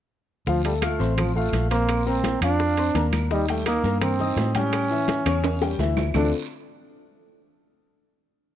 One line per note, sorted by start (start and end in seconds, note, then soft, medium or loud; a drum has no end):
0.46 0.96 D2 medium
0.46 0.62 F3 medium
0.46 0.64 F3 loud
0.46 0.62 F4 medium
0.46 0.62 F5 medium
0.46 high bongo medium
0.46 high conga soft
0.46 long guiro medium
0.46 maracas medium
0.65 0.73 G3 medium
0.65 0.79 A3 medium
0.65 0.79 A4 medium
0.65 0.80 A5 medium
0.65 high conga soft
0.65 high timbale medium
0.65 maracas medium
0.82 1.15 A3 medium
0.82 0.97 F4 medium
0.82 0.97 F5 medium
0.82 0.97 F6 medium
0.82 high bongo medium
0.82 high conga medium
0.82 high timbale loud
0.82 short guiro medium
0.82 claves medium
0.82 maracas medium
0.99 1.50 A1 medium
0.99 1.29 C4 medium
0.99 1.29 C5 medium
0.99 1.29 C6 medium
0.99 high bongo soft
0.99 high conga soft
0.99 short guiro medium
0.99 maracas soft
1.17 1.34 F3 medium
1.17 high bongo medium
1.17 high conga soft
1.17 low conga medium
1.17 high timbale loud
1.17 long guiro medium
1.17 claves medium
1.17 maracas medium
1.35 1.68 A3 medium
1.35 1.65 F4 medium
1.35 1.65 F5 medium
1.35 1.65 F6 medium
1.35 high bongo soft
1.35 high conga soft
1.35 low conga medium
1.53 2.36 A#1 medium
1.53 high bongo soft
1.53 low bongo medium
1.53 high conga medium
1.53 high timbale medium
1.53 short guiro medium
1.53 maracas medium
1.71 2.08 A#3 loud
1.71 2.00 C4 medium
1.71 2.00 C5 medium
1.71 2.00 C6 medium
1.71 high bongo soft
1.71 high timbale medium
1.71 short guiro medium
1.71 maracas soft
1.89 high bongo medium
1.89 high conga soft
1.89 high timbale medium
1.89 long guiro medium
1.89 claves medium
1.89 maracas medium
2.06 2.35 A#3 medium
2.06 2.42 C4 loud
2.06 2.36 A#4 medium
2.06 2.36 A#5 medium
2.06 high conga soft
2.06 maracas medium
2.24 high bongo soft
2.24 high conga loud
2.24 high timbale medium
2.24 short guiro medium
2.24 maracas medium
2.41 2.91 F2 medium
2.41 2.71 F3 medium
2.41 3.09 D4 loud
2.41 2.71 F4 medium
2.41 2.71 F5 medium
2.41 high bongo soft
2.41 high conga soft
2.41 high timbale loud
2.41 short guiro medium
2.41 claves medium
2.41 maracas soft
2.59 high bongo medium
2.59 high conga soft
2.59 long guiro medium
2.59 maracas medium
2.77 2.93 C4 medium
2.77 2.93 C5 medium
2.77 2.93 C6 medium
2.77 high bongo soft
2.77 high conga soft
2.77 high timbale medium
2.77 maracas medium
2.95 3.78 D#2 medium
2.95 3.25 A#3 medium
2.95 3.24 A#4 medium
2.95 3.25 A#5 medium
2.95 high bongo soft
2.95 low bongo medium
2.95 high conga medium
2.95 high timbale medium
2.95 short guiro medium
2.95 maracas medium
3.12 high bongo soft
3.12 high conga loud
3.12 high timbale medium
3.12 short guiro medium
3.12 claves medium
3.12 maracas soft
3.31 3.46 D#3 medium
3.31 3.48 G3 loud
3.31 3.46 D#4 medium
3.31 3.46 D#5 medium
3.31 high bongo medium
3.31 long guiro medium
3.31 maracas medium
3.48 3.63 G3 medium
3.48 3.65 A3 medium
3.48 3.64 G4 medium
3.48 3.64 G5 medium
3.48 high conga soft
3.48 high timbale medium
3.66 4.00 A#3 loud
3.66 3.81 D#4 medium
3.66 3.81 D#5 medium
3.66 3.82 D#6 medium
3.66 high bongo medium
3.66 high conga medium
3.66 high timbale loud
3.66 short guiro medium
3.66 claves medium
3.66 maracas medium
3.84 4.33 G2 medium
3.84 4.14 A#3 medium
3.84 4.14 A#4 medium
3.84 4.14 A#5 medium
3.84 high bongo soft
3.84 high conga soft
3.84 short guiro medium
3.84 maracas soft
4.01 4.58 C4 loud
4.01 high bongo medium
4.01 high conga soft
4.01 low conga medium
4.01 high timbale medium
4.01 long guiro medium
4.01 claves medium
4.01 maracas medium
4.19 4.49 D#4 medium
4.19 4.49 D#5 medium
4.19 4.49 D#6 medium
4.19 high bongo soft
4.19 high conga soft
4.19 low conga medium
4.19 maracas medium
4.36 5.20 A2 medium
4.36 high bongo soft
4.36 low bongo medium
4.36 high conga medium
4.36 high timbale medium
4.36 low timbale medium
4.36 short guiro medium
4.36 maracas medium
4.55 4.84 G3 medium
4.55 5.80 C#4 loud
4.55 4.84 G4 medium
4.55 4.84 G5 medium
4.55 high bongo soft
4.55 high conga medium
4.55 high timbale medium
4.55 short guiro medium
4.55 maracas soft
4.72 high bongo medium
4.72 high conga soft
4.72 high timbale medium
4.72 long guiro medium
4.72 claves medium
4.72 maracas medium
4.90 5.20 E3 medium
4.90 5.20 E4 medium
4.90 5.20 E5 medium
4.90 high conga soft
4.90 maracas medium
5.08 high bongo medium
5.08 high conga loud
5.08 high timbale medium
5.08 short guiro medium
5.08 maracas medium
5.26 5.75 E2 medium
5.26 5.55 C#3 medium
5.26 5.55 C#4 medium
5.26 5.55 C#5 medium
5.26 high bongo soft
5.26 high conga soft
5.26 high timbale loud
5.26 short guiro medium
5.26 claves medium
5.26 maracas soft
5.44 high bongo medium
5.44 high conga soft
5.44 high timbale medium
5.44 long guiro medium
5.44 maracas medium
5.61 5.76 G3 medium
5.61 5.76 G4 medium
5.61 5.77 G5 medium
5.61 high bongo medium
5.61 high conga soft
5.61 high timbale medium
5.61 maracas medium
5.79 6.10 D2 medium
5.79 6.08 E3 medium
5.79 6.09 E4 medium
5.79 6.09 E5 medium
5.79 high bongo medium
5.79 high conga medium
5.79 low timbale medium
5.79 short guiro medium
5.79 maracas medium
5.97 low bongo medium
5.97 high conga loud
5.97 low timbale medium
5.97 short guiro medium
5.97 claves medium
5.97 maracas soft
6.14 6.31 D2 medium
6.14 6.31 D3 medium
6.14 6.31 A3 medium
6.14 6.31 C4 medium
6.14 6.31 D4 medium
6.14 6.32 D4 medium
6.14 6.31 F4 medium
6.14 6.32 A4 loud
6.14 low bongo medium
6.14 low conga medium
6.14 low timbale medium
6.14 long guiro medium
6.14 claves loud
6.14 maracas loud